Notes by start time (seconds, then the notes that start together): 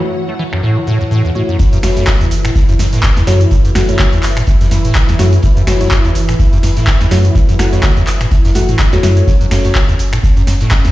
Already playing: E3 E4 F#4 C#5 F#5
0.05 A3 F#4 C#5
0.29 A3
0.39 E3
0.53 F#2, finger snap
0.63 A2
0.77 F#3
0.87 A2
1.01 F#2
1.11 A2
1.25 E2
1.35 A2 A3 F#4 C#5
1.49 F#2
1.59 F#2 E3 E4, kick, closed hi-hat, shaker
1.73 F#2, closed hi-hat, shaker
1.83 F#1 F#2 A3 F#4 C#5, finger snap, snare, open hi-hat, shaker
1.97 F#2 A3 F#4 C#5, closed hi-hat, shaker
2.07 C#3, kick, snare, clap, closed hi-hat, shaker
2.21 E2, closed hi-hat, shaker
2.31 F#1, closed hi-hat, open hi-hat, shaker
2.45 A2, finger snap, closed hi-hat, shaker
2.55 F#2, kick, closed hi-hat, shaker
2.69 F#1 F#2, closed hi-hat, shaker
2.79 F#1 F#2, snare, closed hi-hat, open hi-hat, shaker
2.92 A2, snare, closed hi-hat, shaker
3.03 F#2, kick, snare, clap, closed hi-hat, shaker
3.17 E2, snare, closed hi-hat, shaker
3.27 F#2 F#3 A3 F#4 C#5, snare, closed hi-hat, open hi-hat, shaker
3.41 closed hi-hat, shaker
3.51 F#2, kick, closed hi-hat, shaker
3.65 F#2, closed hi-hat, shaker
3.75 F#1 F#2 A3 F#4 F#5, finger snap, snare, closed hi-hat, open hi-hat, shaker
3.89 F#2 A3 F#4 C#5, closed hi-hat, shaker
3.99 C#3, kick, snare, clap, closed hi-hat, shaker
4.13 E2, closed hi-hat, shaker
4.23 F#1, snare, clap, closed hi-hat, open hi-hat, shaker
4.37 A2, finger snap, closed hi-hat, shaker
4.47 F#2, kick, closed hi-hat, shaker
4.61 F#1 F#2, snare, open hi-hat, shaker
4.71 F#1 F#2, snare, closed hi-hat, open hi-hat, shaker
4.85 A2, closed hi-hat, shaker
4.95 F#2, kick, snare, clap, closed hi-hat, shaker
5.09 E2, snare, closed hi-hat, shaker
5.19 F#2 F#3 A3 F#4 C#5, snare, closed hi-hat, open hi-hat, shaker
5.33 closed hi-hat, shaker
5.43 F#2, kick, closed hi-hat, shaker
5.57 F#2, closed hi-hat, shaker
5.67 F#1 F#2 A3 F#4 C#5, finger snap, snare, open hi-hat, shaker
5.81 F#2 A3 F#4 C#5, closed hi-hat, shaker
5.91 C#3, kick, snare, clap, closed hi-hat, shaker
6.05 E2, closed hi-hat, shaker
6.15 F#1, closed hi-hat, open hi-hat, shaker
6.29 A2, finger snap, closed hi-hat, shaker
6.39 F#2, kick, closed hi-hat, shaker
6.52 F#1 F#2, closed hi-hat, shaker
6.63 F#1 F#2, snare, closed hi-hat, open hi-hat, shaker
6.76 A2, snare, closed hi-hat, shaker
6.87 F#2, kick, snare, clap, closed hi-hat, shaker
7.01 E2, snare, closed hi-hat, shaker
7.11 F#2 F#3 A3 F#4 C#5, snare, closed hi-hat, open hi-hat, shaker
7.25 closed hi-hat, shaker
7.35 F#2, kick, closed hi-hat, shaker
7.49 F#2, closed hi-hat, shaker
7.59 F#1 F#2 A3 F#4 F#5, finger snap, snare, closed hi-hat, open hi-hat, shaker
7.73 F#2 A3 F#4 C#5, closed hi-hat, shaker
7.83 C#3, kick, snare, clap, closed hi-hat, shaker
7.97 E2, closed hi-hat, shaker
8.07 F#1, snare, clap, closed hi-hat, open hi-hat, shaker
8.21 A2, finger snap, closed hi-hat, shaker
8.31 F#2, kick, closed hi-hat, shaker
8.45 F#1 F#2, snare, open hi-hat, shaker
8.55 F#1 F#2 A3 F#4 F#5, snare, closed hi-hat, open hi-hat, shaker
8.69 A2, closed hi-hat, shaker
8.79 F#2, kick, snare, clap, closed hi-hat, shaker
8.93 E2 A3 F#4 C#5, snare, closed hi-hat, shaker
9.03 F#2 F#3 A3 F#4 C#5, snare, closed hi-hat, open hi-hat, shaker
9.17 A3 F#4 C#5, closed hi-hat, shaker
9.27 F#2 C#4, kick, closed hi-hat, shaker
9.41 F#2, closed hi-hat, shaker
9.51 F#1 F#2 A3 F#4 C#5, finger snap, snare, open hi-hat, shaker
9.65 F#2 A3 F#4 C#5, closed hi-hat, shaker
9.75 C#3, kick, snare, clap, closed hi-hat, shaker
9.89 E2, closed hi-hat, shaker
9.99 F#1, closed hi-hat, open hi-hat, shaker
10.13 A2, finger snap, closed hi-hat, shaker
10.23 F#2, kick, closed hi-hat, shaker
10.37 F#1 F#2, closed hi-hat, shaker
10.47 F#1 F#2, snare, closed hi-hat, open hi-hat, shaker
10.61 A2, snare, closed hi-hat, shaker
10.71 F#2, kick, snare, clap, closed hi-hat, shaker
10.85 E2, snare, closed hi-hat, shaker